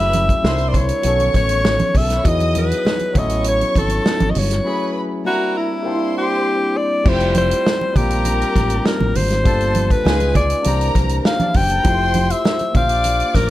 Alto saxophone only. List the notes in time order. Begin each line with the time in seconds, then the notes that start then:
Already playing: E5
0.68 D5
0.76 C#5
1.36 C#5
1.97 E5
2.28 D#5
2.58 B4
3.18 D#5
3.48 C#5
3.78 A4
4.30 D#5
4.38 C#5
5.27 F#4
5.57 E4
6.18 G4
6.77 D5
7.08 C5
7.38 C5
7.97 G4
8.86 A#4
9.16 C5
9.91 B4
10.36 D5
11.26 F5
11.56 G5
12.31 E5
12.77 F5
13.35 A#4